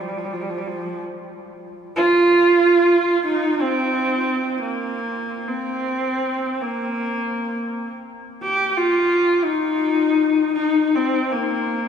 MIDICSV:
0, 0, Header, 1, 2, 480
1, 0, Start_track
1, 0, Tempo, 500000
1, 11406, End_track
2, 0, Start_track
2, 0, Title_t, "Horsehead fiddle"
2, 0, Program_c, 0, 110
2, 5, Note_on_c, 0, 53, 53
2, 74, Note_on_c, 0, 55, 50
2, 88, Note_off_c, 0, 53, 0
2, 162, Note_on_c, 0, 53, 55
2, 176, Note_off_c, 0, 55, 0
2, 236, Note_on_c, 0, 55, 50
2, 251, Note_off_c, 0, 53, 0
2, 316, Note_on_c, 0, 53, 52
2, 330, Note_off_c, 0, 55, 0
2, 393, Note_on_c, 0, 55, 48
2, 408, Note_off_c, 0, 53, 0
2, 474, Note_on_c, 0, 53, 53
2, 489, Note_off_c, 0, 55, 0
2, 549, Note_on_c, 0, 55, 50
2, 563, Note_off_c, 0, 53, 0
2, 642, Note_on_c, 0, 53, 54
2, 656, Note_off_c, 0, 55, 0
2, 977, Note_off_c, 0, 53, 0
2, 1882, Note_on_c, 0, 65, 97
2, 3084, Note_off_c, 0, 65, 0
2, 3123, Note_on_c, 0, 63, 91
2, 3469, Note_on_c, 0, 60, 84
2, 3484, Note_off_c, 0, 63, 0
2, 4413, Note_off_c, 0, 60, 0
2, 4423, Note_on_c, 0, 58, 72
2, 5261, Note_on_c, 0, 60, 75
2, 5275, Note_off_c, 0, 58, 0
2, 6352, Note_on_c, 0, 58, 71
2, 6366, Note_off_c, 0, 60, 0
2, 7641, Note_off_c, 0, 58, 0
2, 8092, Note_on_c, 0, 67, 87
2, 8421, Note_on_c, 0, 65, 89
2, 8435, Note_off_c, 0, 67, 0
2, 9062, Note_on_c, 0, 63, 85
2, 9077, Note_off_c, 0, 65, 0
2, 10113, Note_off_c, 0, 63, 0
2, 10119, Note_on_c, 0, 63, 86
2, 10512, Note_on_c, 0, 60, 76
2, 10526, Note_off_c, 0, 63, 0
2, 10862, Note_on_c, 0, 58, 76
2, 10877, Note_off_c, 0, 60, 0
2, 11406, Note_off_c, 0, 58, 0
2, 11406, End_track
0, 0, End_of_file